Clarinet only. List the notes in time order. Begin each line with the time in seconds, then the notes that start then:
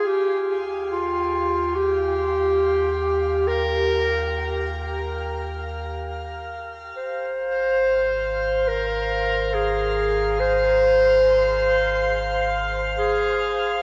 0.06 G4
0.91 F4
1.75 G4
3.48 A#4
6.97 C5
8.68 A#4
9.54 G#4
10.39 C5
12.98 G#4